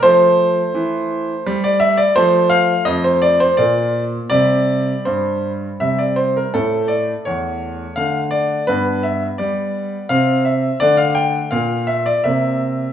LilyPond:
<<
  \new Staff \with { instrumentName = "Grand piano" } { \time 3/4 \key f \major \tempo 4 = 84 c''2~ c''16 d''16 e''16 d''16 | c''8 f''8 ees''16 c''16 d''16 c''16 d''4 | d''4 c''4 e''16 d''16 c''16 bes'16 | a'8 d''8 cis''4 f''8 d''8 |
b'8 e''8 d''4 f''8 e''8 | d''16 f''16 g''8 f''8 e''16 d''16 e''4 | }
  \new Staff \with { instrumentName = "Grand piano" } { \clef bass \time 3/4 \key f \major << { a2. | a2 bes4 | g2 g4 | a2 a4 |
b2 c'4 | a4 bes4 bes4 | } \\ { f4 e4 g4 | f4 f,4 bes,4 | c4 g,4 c4 | a,4 e,4 d4 |
g,4 g4 c4 | d4 bes,4 c4 | } >> }
>>